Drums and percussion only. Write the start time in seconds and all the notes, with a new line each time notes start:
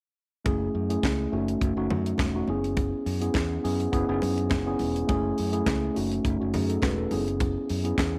0.46 kick, closed hi-hat, muted conga
0.90 closed hi-hat
1.03 kick, snare, clap, closed hi-hat, high conga
1.48 closed hi-hat
1.61 kick, closed hi-hat, muted conga
1.90 muted conga, low conga
2.06 closed hi-hat
2.18 kick, snare, clap, closed hi-hat, high conga
2.47 high conga
2.64 closed hi-hat
2.77 kick, closed hi-hat, muted conga
3.06 open hi-hat
3.22 closed hi-hat
3.34 kick, snare, clap, closed hi-hat, high conga
3.65 open hi-hat
3.80 closed hi-hat
3.93 kick, closed hi-hat, muted conga
4.22 open hi-hat, muted conga
4.38 closed hi-hat
4.50 kick, snare, clap, closed hi-hat, high conga
4.79 open hi-hat, high conga
4.96 closed hi-hat
5.09 kick, closed hi-hat, muted conga
5.38 open hi-hat
5.53 closed hi-hat
5.66 kick, snare, clap, closed hi-hat, high conga
5.96 open hi-hat
6.12 closed hi-hat
6.25 kick, closed hi-hat, muted conga
6.54 open hi-hat, muted conga, low conga
6.70 closed hi-hat
6.82 kick, snare, clap, closed hi-hat, high conga
7.11 open hi-hat, high conga
7.28 closed hi-hat
7.40 kick, closed hi-hat, muted conga
7.69 open hi-hat
7.85 closed hi-hat
7.98 kick, snare, clap, closed hi-hat, high conga